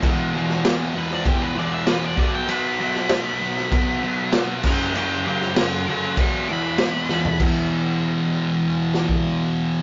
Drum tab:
CC |x---x---x---x---|x---x---x---x-x-|x---x---x---x---|x---------------|
SD |---oo--o----o---|---oo--o----o---|---oo-------o-o-|----------o-----|
FT |----------------|----------------|---------------o|----------------|
BD |o-------o-----o-|--------o-----o-|--------o-------|o----------o----|